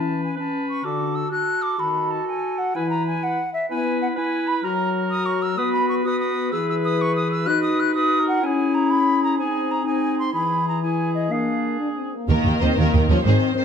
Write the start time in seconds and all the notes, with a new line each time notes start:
Already playing: E3 C#4 B4 A5
0.23 G#5
0.36 C#4 B4 A5
0.69 C#6
0.83 D3 F#4 A4 D6
1.15 E6
1.31 F#4 A4 F#6
1.62 D6
1.78 D#3 F#4 A4 B5
2.10 A5
2.27 G#5
2.58 F#5
2.75 E3 E4 B4 G#5
2.89 A#5
3.07 G#5
3.23 F#5
3.53 E5
3.69 B3 E4 B4 G#5
4.01 F#5
4.16 E4 B4 G#5
4.47 B5
4.63 F#3 F#4 A#4 A#5
5.10 D#6
5.25 C#6
5.42 E6
5.57 B3 F#4 B4 D#6
5.72 B5
5.89 C#6
6.04 F#4 B4 D#6
6.20 D#6
6.52 E3 G#4 B4 E6
6.69 E6
6.84 D#6
7.01 C#6
7.15 D#6
7.31 E6
7.46 D#4 F#4 B4 F#6
7.62 D#6
7.79 F#6
7.94 F#4 B4 D#6
8.20 A#4
8.28 F#5
8.41 C#4 E4 G#5
8.45 G#4
8.74 A#5
8.90 B5
9.23 A#5
9.38 C4 D#4 G#4 G#5
9.71 A#5
9.84 D#4 G#4 G#5
10.19 C6
10.32 E3 E4 G#4 B5
10.68 A#5
10.82 E4 G#4 G#5
11.15 D#5
11.29 A#3 D4 G#4 F5
11.80 D4
11.96 C4
12.14 A#3
12.29 D#2 D#3 A#3 A#4
12.45 D#2 G5
12.61 D#2 D#3 C4 C5 D#5
12.77 D#2 D#3 A#3 A#4
12.94 D#2 G5
13.09 D#2 F3 C#4 C#5 D#5
13.25 G#1 G#2 D#3 C4 G#4 C5
13.54 D#3 C4 C5